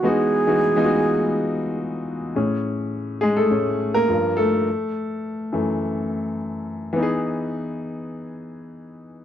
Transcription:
0.03 grand piano E3 G#3 B3 D#4 F#4
0.08 alto flute G#4
0.47 grand piano E3 G#3 B3 D#4 F#4
0.76 grand piano E3 G#3 B3 D#4 F4
0.85 grand piano F#4
2.35 grand piano A2 C#4 G#4
3.21 grand piano G#3 G#4
3.37 grand piano A3 A4
3.51 grand piano A2 G#3 C#4
3.94 grand piano A#3 A#4
4.08 grand piano G2 F3 A#3
4.37 grand piano A3 A4
5.52 grand piano F#2 E3 A3
6.93 grand piano E3 B3
6.99 grand piano D#4 G#4

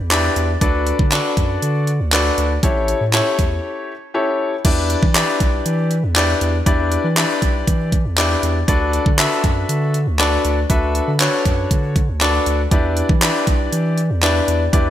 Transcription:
0.00 sub bass E2
0.11 grand piano D4 E4 G4 B4 D5, clap, closed hi-hat
0.36 sub bass E2, closed hi-hat
0.61 sub bass D2, grand piano D4 F#4 A4 B4 D5, kick, closed hi-hat
0.87 closed hi-hat
0.99 sub bass D3, kick
1.11 grand piano D4 F#4 A4 B4 D5, clap, closed hi-hat
1.37 sub bass F#2, kick, closed hi-hat
1.62 sub bass D3, closed hi-hat
1.87 closed hi-hat
2.00 sub bass D2
2.12 grand piano D4 F#4 A4 B4 D5, clap, closed hi-hat
2.38 sub bass D2, closed hi-hat
2.63 sub bass A1, grand piano C#4 E4 G4 A4 C#5, kick, closed hi-hat
2.88 closed hi-hat
3.01 sub bass A2
3.13 grand piano C#4 E4 G4 A4 C#5, clap, closed hi-hat
3.39 sub bass E2, kick, closed hi-hat
4.14 grand piano C#4 E4 G4 A4 C#5
4.65 sub bass E2, grand piano D4 E4 G4 B4 D5, kick, closed hi-hat, crash
4.90 closed hi-hat
5.03 sub bass E3, kick
5.15 grand piano D4 E4 G4 B4 D5, clap, closed hi-hat
5.40 sub bass B1, kick, closed hi-hat
5.66 sub bass E3, closed hi-hat
5.91 closed hi-hat
6.03 sub bass E2
6.16 grand piano D4 E4 G4 B4 D5, clap, closed hi-hat
6.41 sub bass E2, closed hi-hat
6.66 sub bass E2, grand piano D4 E4 G4 B4 D5, kick, closed hi-hat
6.92 closed hi-hat
7.04 sub bass E3
7.16 grand piano D4 E4 G4 B4 D5, clap, closed hi-hat
7.42 sub bass B1, kick, closed hi-hat
7.67 sub bass E3, kick, closed hi-hat
7.92 kick, closed hi-hat
8.05 sub bass E2
8.17 grand piano D4 E4 G4 B4 D5, clap, closed hi-hat
8.43 sub bass E2, closed hi-hat
8.68 sub bass D2, grand piano D4 F#4 A4 B4 D5, kick, closed hi-hat
8.93 closed hi-hat
9.06 sub bass D3, kick
9.18 grand piano D4 F#4 A4 B4 E5, clap, closed hi-hat
9.44 sub bass F#2, kick, closed hi-hat
9.69 sub bass D3, closed hi-hat
9.94 closed hi-hat
10.07 sub bass D2
10.19 grand piano D4 F#4 A4 B4 D5, clap, closed hi-hat
10.45 sub bass D2, closed hi-hat
10.70 sub bass D2, grand piano D4 F#4 A4 B4 E5, kick, closed hi-hat
10.95 closed hi-hat
11.08 sub bass D3
11.20 grand piano D4 F#4 A4 B4 C#5, clap, closed hi-hat
11.45 sub bass F#2, kick, closed hi-hat
11.71 sub bass D3, kick, closed hi-hat
11.96 kick, closed hi-hat
12.09 sub bass D2
12.21 grand piano D4 F#4 A4 B4 D5, clap, closed hi-hat
12.46 sub bass D2, closed hi-hat
12.71 sub bass E2, grand piano D4 E4 G4 B4 D5, kick, closed hi-hat
12.97 closed hi-hat
13.09 sub bass E3, kick
13.22 grand piano D4 E4 G4 B4 D5, clap, closed hi-hat
13.47 sub bass B1, kick, closed hi-hat
13.72 sub bass E3, closed hi-hat
13.98 closed hi-hat
14.10 sub bass E2
14.22 grand piano D4 E4 G4 B4 D5, clap, closed hi-hat
14.48 sub bass E2, closed hi-hat
14.73 sub bass E2, grand piano D4 E4 G4 B4 D5, kick, closed hi-hat

